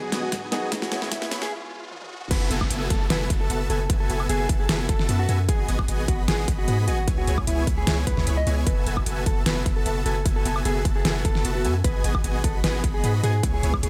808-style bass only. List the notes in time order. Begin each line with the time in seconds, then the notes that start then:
Already playing: G#1
0.12 G#1
0.32 G#2
0.52 G#1
0.72 C#2
0.92 C#2
1.12 C#2
1.31 C#2
2.31 F#1
2.51 F#1
2.70 F#1
2.90 F#1
3.10 F#1
3.30 F#1
3.50 F#1
3.70 F#1
3.90 F#1
4.10 F#1
4.29 F#1
4.49 F#1
4.69 F#1
4.89 F#1
5.09 F#2
5.29 F#2
5.49 G#1
5.68 G#1
5.88 G#1
6.08 G#1
6.28 G#1
6.48 G#1
6.68 G#2
6.88 G#1
7.08 C#2
7.27 C#2
7.47 C#2
7.67 C#2
7.87 C#2
8.07 C#2
8.17 C#2
8.27 C#2
8.47 C#2
8.67 F#1
8.86 F#1
9.06 F#1
9.26 F#1
9.46 F#1
9.66 F#1
9.86 F#1
10.06 F#1
10.26 F#1
10.45 F#1
10.65 F#1
10.85 F#1
11.05 F#1
11.25 F#1
11.45 F#1
11.65 F#2
11.84 G#1
12.04 G#1
12.24 G#1
12.44 G#1
12.64 G#1
12.84 G#1
13.04 G#2
13.23 G#2
13.43 C#2
13.63 C#2
13.83 C#2